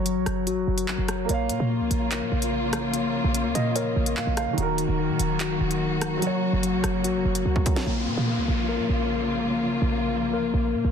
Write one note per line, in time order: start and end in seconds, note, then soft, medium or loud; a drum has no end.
0.00 0.18 F#1 loud
0.00 1.24 F#3 medium
0.00 1.25 F#4 medium
0.00 1.26 A#4 medium
0.00 1.28 C#5 medium
0.06 1.29 F#3 medium
0.06 closed hi-hat medium
0.16 0.26 A#1 loud
0.26 0.48 F#1 loud
0.26 cross-stick medium
0.26 closed hi-hat medium
0.47 0.59 A1 loud
0.47 1.29 F#4 loud
0.47 closed hi-hat medium
0.57 0.67 F#1 loud
0.68 0.90 F#1 loud
0.78 closed hi-hat medium
0.88 0.98 A#1 loud
0.88 clap loud
0.98 1.28 F#1 loud
1.08 cross-stick loud
1.08 closed hi-hat medium
1.25 4.52 A#3 medium
1.25 4.53 A#4 medium
1.29 1.51 A#1 loud
1.29 4.55 C#3 medium
1.29 4.55 F3 medium
1.29 4.55 A#3 medium
1.29 1.69 A#3 loud
1.29 4.55 F4 medium
1.29 3.74 C#5 medium
1.29 closed hi-hat medium
1.34 4.15 F5 medium
1.49 1.59 A#2 loud
1.49 closed hi-hat medium
1.60 1.82 A#2 loud
1.70 2.92 A#3 medium
1.80 1.90 C#2 loud
1.91 2.23 A#1 loud
1.91 closed hi-hat medium
2.11 3.75 A#4 loud
2.11 clap loud
2.11 closed hi-hat medium
2.22 2.31 A#2 loud
2.32 3.21 A#1 loud
2.42 closed hi-hat medium
2.73 cross-stick loud
2.73 closed hi-hat medium
2.94 3.33 A#3 medium
2.94 closed hi-hat medium
3.24 3.46 A#1 loud
3.34 4.58 A#3 medium
3.34 closed hi-hat medium
3.45 3.55 C#2 loud
3.55 3.95 A#2 loud
3.55 3.74 D#5 medium
3.55 closed hi-hat medium
3.76 4.58 A#4 loud
3.76 4.14 C#5 medium
3.76 closed hi-hat medium
3.96 4.18 A#1 loud
4.06 closed hi-hat medium
4.17 4.27 A#2 loud
4.17 4.36 F5 medium
4.17 clap loud
4.27 4.49 A#1 loud
4.37 4.57 F5 medium
4.37 cross-stick loud
4.37 closed hi-hat medium
4.48 4.57 C#3 loud
4.53 6.17 D#3 medium
4.53 6.18 D#4 medium
4.58 4.87 D#1 loud
4.58 6.21 D#3 medium
4.58 4.98 D#3 medium
4.58 7.83 F#3 medium
4.58 6.21 A#3 medium
4.58 7.83 F#4 medium
4.58 6.19 F#4 medium
4.58 closed hi-hat medium
4.62 6.21 A#4 medium
4.78 closed hi-hat medium
4.89 5.11 D#1 loud
4.99 6.22 D#3 medium
5.09 5.19 A#2 loud
5.19 5.59 D#1 loud
5.19 closed hi-hat medium
5.40 6.22 F#4 loud
5.40 clap loud
5.40 closed hi-hat medium
5.61 6.20 D#1 loud
5.71 closed hi-hat medium
6.01 cross-stick loud
6.01 closed hi-hat medium
6.18 7.81 F#3 medium
6.18 7.83 F#4 medium
6.22 7.85 C#3 medium
6.22 6.62 F#3 medium
6.22 7.85 A#3 medium
6.22 7.84 A#4 medium
6.22 closed hi-hat medium
6.27 7.86 C#5 loud
6.53 6.75 F#1 loud
6.63 7.87 F#3 medium
6.63 closed hi-hat medium
6.74 6.83 A#1 loud
6.84 7.06 F#1 loud
6.84 cross-stick medium
6.84 closed hi-hat medium
7.04 7.16 A1 loud
7.04 7.87 F#4 loud
7.04 closed hi-hat medium
7.15 7.24 F#1 loud
7.25 7.45 F#1 loud
7.35 closed hi-hat medium
7.46 7.65 C#2 loud
7.56 kick medium
7.66 kick loud
7.66 closed hi-hat medium
7.76 snare medium
7.87 8.09 A#1 loud
7.87 10.92 C#3 medium
7.87 10.92 F3 medium
7.87 10.92 A#3 medium
7.87 8.26 A#3 medium
7.87 10.92 F4 medium
7.87 downlifter medium
8.07 8.17 A#2 loud
8.17 8.39 A#2 loud
8.28 9.50 A#3 medium
8.38 8.48 C#2 loud
8.48 8.81 A#1 loud
8.69 10.32 A#4 medium
8.79 8.89 A#2 loud
8.89 9.78 A#1 loud
9.51 9.91 A#3 medium
9.82 10.35 A#1 loud
9.92 10.92 A#3 medium
10.33 10.45 C#2 loud
10.33 10.92 A#4 loud
10.43 10.53 A#1 loud
10.54 10.76 A#1 loud
10.74 10.84 A#2 loud
10.85 10.92 A#1 loud